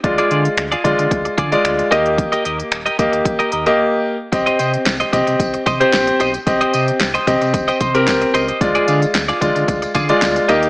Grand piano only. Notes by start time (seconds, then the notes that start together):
0.03 G#3 F4 D5
0.84 G#3 F4 D5
1.52 G#3 F4 D5
1.91 A#3 G4 D#5
2.99 A#3 G4 D#5
3.66 A#3 G4 D#5
4.32 C4 G4 D#5
5.12 C4 G4 D#5
5.80 C4 G4 C5
6.46 C4 G4 D#5
7.27 C4 G4 D#5
7.94 C4 G4 A#4
8.61 G#3 F4 D5
9.41 G#3 F4 D5
10.09 G#3 F4 D5
10.49 A#3 G4 D#5